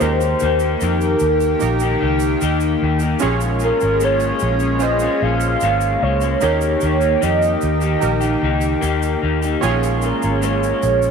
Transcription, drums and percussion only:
0.00 shaker medium
0.21 shaker soft
0.40 shaker medium
0.60 shaker soft
0.81 shaker medium
1.01 shaker soft
1.19 shaker medium
1.40 shaker soft
1.60 shaker medium
1.80 shaker medium
2.20 shaker medium
2.41 shaker medium
2.60 shaker soft
2.99 shaker soft
3.19 shaker medium
3.41 shaker medium
3.59 shaker soft
3.81 shaker soft
4.00 shaker medium
4.20 shaker soft
4.39 shaker medium
4.60 shaker soft
4.80 shaker medium
4.99 shaker medium
5.40 shaker medium
5.61 shaker medium
5.81 shaker soft
6.21 shaker soft
6.41 shaker medium
6.61 shaker medium
6.81 shaker soft
7.01 shaker soft
7.22 shaker medium
7.42 shaker soft
7.61 shaker medium
7.81 shaker soft
8.02 shaker medium
8.21 shaker soft
8.61 shaker medium
8.82 shaker medium
9.02 shaker soft
9.42 shaker soft
9.63 shaker medium
9.83 shaker medium
10.02 shaker soft
10.22 shaker soft
10.42 shaker medium
10.63 shaker soft
10.83 shaker medium
11.02 shaker soft

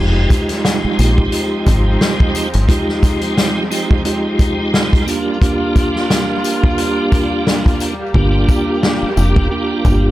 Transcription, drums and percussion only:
0.30 kick medium
0.30 closed hi-hat medium
0.30 tambourine medium
0.49 snare soft
0.49 closed hi-hat medium
0.65 snare loud
0.65 closed hi-hat loud
0.99 closed hi-hat medium
0.99 tambourine medium
1.18 kick loud
1.32 closed hi-hat medium
1.66 kick loud
1.66 closed hi-hat medium
1.66 tambourine soft
2.01 snare loud
2.01 closed hi-hat medium
2.20 kick loud
2.35 closed hi-hat medium
2.35 tambourine medium
2.53 closed hi-hat medium
2.69 kick loud
2.69 closed hi-hat medium
2.89 snare soft
3.03 kick medium
3.03 closed hi-hat medium
3.03 tambourine medium
3.21 closed hi-hat medium
3.37 snare loud
3.37 closed hi-hat loud
3.72 closed hi-hat medium
3.72 tambourine medium
3.91 kick loud
4.05 closed hi-hat medium
4.39 kick loud
4.39 closed hi-hat medium
4.39 tambourine soft
4.74 snare loud
4.74 closed hi-hat medium
4.93 kick loud
4.93 closed hi-hat medium
5.08 closed hi-hat medium
5.08 tambourine medium
5.42 kick loud
5.42 closed hi-hat loud
5.76 kick medium
5.76 closed hi-hat medium
5.76 tambourine medium
5.96 snare soft
6.10 snare loud
6.10 closed hi-hat loud
6.44 closed hi-hat medium
6.44 tambourine medium
6.64 kick loud
6.78 closed hi-hat medium
7.12 kick loud
7.12 closed hi-hat medium
7.12 tambourine soft
7.47 snare loud
7.47 closed hi-hat medium
7.66 kick loud
7.66 closed hi-hat medium
7.80 closed hi-hat medium
7.80 tambourine medium
8.14 kick loud
8.49 kick medium
8.49 tambourine medium
8.83 snare loud
9.17 tambourine medium
9.36 kick loud
9.85 kick loud
9.85 tambourine soft

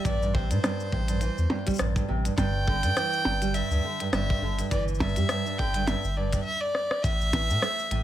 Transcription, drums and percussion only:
0.05 kick loud
0.05 closed hi-hat soft
0.05 cabasa soft
0.22 cabasa soft
0.35 kick medium
0.51 closed hi-hat medium
0.51 cabasa medium
0.64 cross-stick medium
0.64 closed hi-hat soft
0.64 percussion blips medium
0.64 cabasa medium
0.80 cabasa soft
0.93 kick medium
1.08 closed hi-hat medium
1.08 cabasa medium
1.21 closed hi-hat soft
1.21 cabasa medium
1.38 cabasa soft
1.50 percussion blips medium
1.67 kick soft
1.67 closed hi-hat medium
1.67 cabasa soft
1.69 cabasa soft
1.74 cabasa soft
1.76 cabasa soft
1.78 cross-stick medium
1.78 closed hi-hat soft
1.78 cabasa soft
1.80 cabasa soft
1.96 kick medium
1.96 cabasa soft
2.25 closed hi-hat medium
2.25 cabasa medium
2.38 kick loud
2.38 closed hi-hat soft
2.38 percussion blips medium
2.38 cabasa medium
2.68 kick medium
2.83 closed hi-hat medium
2.83 cabasa medium
2.97 cross-stick loud
2.97 closed hi-hat soft
2.97 cabasa medium
3.13 cabasa soft
3.25 percussion blips medium
3.42 closed hi-hat medium
3.42 cabasa medium
3.54 closed hi-hat soft
3.54 cabasa medium
3.71 cabasa soft
4.00 closed hi-hat medium
4.13 cross-stick medium
4.13 closed hi-hat soft
4.13 percussion blips medium
4.13 cabasa soft
4.30 kick loud
4.59 closed hi-hat medium
4.59 cabasa medium
4.71 kick loud
4.71 closed hi-hat soft
4.71 cabasa medium
4.88 cabasa soft
4.94 cabasa soft
5.00 kick loud
5.00 percussion blips medium
5.00 cabasa soft
5.09 cabasa soft
5.16 closed hi-hat medium
5.16 cabasa medium
5.29 cross-stick medium
5.29 closed hi-hat soft
5.29 cabasa soft
5.46 cabasa soft
5.59 kick medium
5.74 closed hi-hat medium
5.74 cabasa medium
5.87 closed hi-hat soft
5.87 percussion blips medium
5.87 cabasa medium
6.05 cabasa soft
6.33 kick medium
6.33 closed hi-hat medium
6.33 cabasa medium
6.75 cross-stick medium
6.91 cross-stick medium
7.04 kick loud
7.04 cabasa medium
7.21 cabasa soft
7.33 kick loud
7.33 closed hi-hat medium
7.33 percussion blips medium
7.50 cabasa medium
7.62 cross-stick loud
7.62 cabasa medium
7.79 cabasa soft
7.91 closed hi-hat medium

